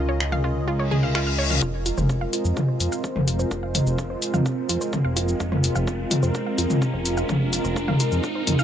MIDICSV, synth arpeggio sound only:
0, 0, Header, 1, 2, 480
1, 0, Start_track
1, 0, Key_signature, -4, "minor"
1, 0, Tempo, 472441
1, 1649, Time_signature, 4, 2, 24, 8
1, 8776, End_track
2, 0, Start_track
2, 0, Title_t, "Synth arpeggio sound"
2, 0, Program_c, 0, 84
2, 87, Note_on_c, 0, 73, 75
2, 158, Note_off_c, 0, 73, 0
2, 327, Note_on_c, 0, 77, 94
2, 398, Note_off_c, 0, 77, 0
2, 448, Note_on_c, 0, 65, 74
2, 518, Note_off_c, 0, 65, 0
2, 687, Note_on_c, 0, 65, 81
2, 793, Note_off_c, 0, 65, 0
2, 807, Note_on_c, 0, 73, 71
2, 878, Note_off_c, 0, 73, 0
2, 927, Note_on_c, 0, 68, 102
2, 998, Note_off_c, 0, 68, 0
2, 1047, Note_on_c, 0, 77, 73
2, 1118, Note_off_c, 0, 77, 0
2, 1168, Note_on_c, 0, 65, 99
2, 1238, Note_off_c, 0, 65, 0
2, 1287, Note_on_c, 0, 89, 72
2, 1393, Note_off_c, 0, 89, 0
2, 1407, Note_on_c, 0, 73, 101
2, 1478, Note_off_c, 0, 73, 0
2, 1527, Note_on_c, 0, 77, 77
2, 1598, Note_off_c, 0, 77, 0
2, 1648, Note_on_c, 0, 65, 81
2, 1718, Note_off_c, 0, 65, 0
2, 1888, Note_on_c, 0, 65, 74
2, 1993, Note_off_c, 0, 65, 0
2, 2007, Note_on_c, 0, 72, 71
2, 2078, Note_off_c, 0, 72, 0
2, 2247, Note_on_c, 0, 77, 99
2, 2318, Note_off_c, 0, 77, 0
2, 2367, Note_on_c, 0, 65, 73
2, 2438, Note_off_c, 0, 65, 0
2, 2608, Note_on_c, 0, 65, 84
2, 2713, Note_off_c, 0, 65, 0
2, 2728, Note_on_c, 0, 72, 70
2, 2798, Note_off_c, 0, 72, 0
2, 2968, Note_on_c, 0, 77, 92
2, 3038, Note_off_c, 0, 77, 0
2, 3088, Note_on_c, 0, 65, 79
2, 3158, Note_off_c, 0, 65, 0
2, 3328, Note_on_c, 0, 65, 77
2, 3433, Note_off_c, 0, 65, 0
2, 3448, Note_on_c, 0, 72, 78
2, 3518, Note_off_c, 0, 72, 0
2, 3687, Note_on_c, 0, 77, 93
2, 3758, Note_off_c, 0, 77, 0
2, 3807, Note_on_c, 0, 65, 73
2, 3878, Note_off_c, 0, 65, 0
2, 4047, Note_on_c, 0, 65, 79
2, 4153, Note_off_c, 0, 65, 0
2, 4166, Note_on_c, 0, 72, 73
2, 4238, Note_off_c, 0, 72, 0
2, 4406, Note_on_c, 0, 77, 102
2, 4477, Note_off_c, 0, 77, 0
2, 4526, Note_on_c, 0, 65, 82
2, 4597, Note_off_c, 0, 65, 0
2, 4767, Note_on_c, 0, 65, 77
2, 4873, Note_off_c, 0, 65, 0
2, 4888, Note_on_c, 0, 72, 74
2, 4958, Note_off_c, 0, 72, 0
2, 5126, Note_on_c, 0, 77, 103
2, 5198, Note_off_c, 0, 77, 0
2, 5246, Note_on_c, 0, 65, 79
2, 5318, Note_off_c, 0, 65, 0
2, 5486, Note_on_c, 0, 65, 84
2, 5592, Note_off_c, 0, 65, 0
2, 5607, Note_on_c, 0, 72, 71
2, 5678, Note_off_c, 0, 72, 0
2, 5847, Note_on_c, 0, 77, 98
2, 5918, Note_off_c, 0, 77, 0
2, 5968, Note_on_c, 0, 65, 82
2, 6038, Note_off_c, 0, 65, 0
2, 6207, Note_on_c, 0, 65, 75
2, 6313, Note_off_c, 0, 65, 0
2, 6327, Note_on_c, 0, 72, 78
2, 6398, Note_off_c, 0, 72, 0
2, 6568, Note_on_c, 0, 77, 94
2, 6638, Note_off_c, 0, 77, 0
2, 6687, Note_on_c, 0, 65, 75
2, 6758, Note_off_c, 0, 65, 0
2, 6928, Note_on_c, 0, 65, 84
2, 7033, Note_off_c, 0, 65, 0
2, 7047, Note_on_c, 0, 72, 72
2, 7118, Note_off_c, 0, 72, 0
2, 7288, Note_on_c, 0, 77, 104
2, 7358, Note_off_c, 0, 77, 0
2, 7408, Note_on_c, 0, 65, 88
2, 7478, Note_off_c, 0, 65, 0
2, 7647, Note_on_c, 0, 65, 74
2, 7753, Note_off_c, 0, 65, 0
2, 7767, Note_on_c, 0, 72, 75
2, 7838, Note_off_c, 0, 72, 0
2, 8007, Note_on_c, 0, 77, 98
2, 8078, Note_off_c, 0, 77, 0
2, 8127, Note_on_c, 0, 65, 77
2, 8198, Note_off_c, 0, 65, 0
2, 8367, Note_on_c, 0, 65, 82
2, 8473, Note_off_c, 0, 65, 0
2, 8487, Note_on_c, 0, 72, 76
2, 8558, Note_off_c, 0, 72, 0
2, 8726, Note_on_c, 0, 77, 99
2, 8776, Note_off_c, 0, 77, 0
2, 8776, End_track
0, 0, End_of_file